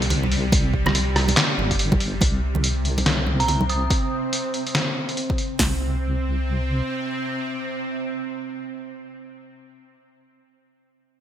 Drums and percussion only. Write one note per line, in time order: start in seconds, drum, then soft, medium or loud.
0.02 closed hi-hat medium
0.10 closed hi-hat medium
0.10 low conga medium
0.23 high conga medium
0.32 open hi-hat medium
0.52 kick loud
0.52 closed hi-hat medium
0.52 high conga medium
0.74 kick medium
0.86 cross-stick medium
0.86 high conga medium
0.86 low conga medium
0.95 closed hi-hat medium
1.16 cross-stick medium
1.16 open hi-hat medium
1.28 closed hi-hat medium
1.28 high conga medium
1.37 snare loud
1.37 clap medium
1.37 closed hi-hat medium
1.59 high conga medium
1.71 kick medium
1.71 closed hi-hat medium
1.79 closed hi-hat medium
1.92 kick loud
1.92 high conga loud
2.00 open hi-hat medium
2.21 kick loud
2.21 closed hi-hat medium
2.21 high conga medium
2.55 high conga medium
2.55 low conga medium
2.64 closed hi-hat medium
2.85 closed hi-hat medium
2.98 closed hi-hat medium
2.98 high conga medium
3.06 snare loud
3.06 closed hi-hat medium
3.27 high conga medium
3.40 closed hi-hat medium
3.48 closed hi-hat medium
3.48 low conga medium
3.61 high conga loud
3.69 closed hi-hat medium
3.90 kick loud
3.90 closed hi-hat medium
4.33 closed hi-hat medium
4.54 closed hi-hat medium
4.67 closed hi-hat medium
4.75 snare loud
4.75 closed hi-hat medium
5.09 closed hi-hat medium
5.17 closed hi-hat medium
5.30 kick loud
5.38 closed hi-hat soft
5.59 kick loud
5.59 snare loud
5.59 open hi-hat medium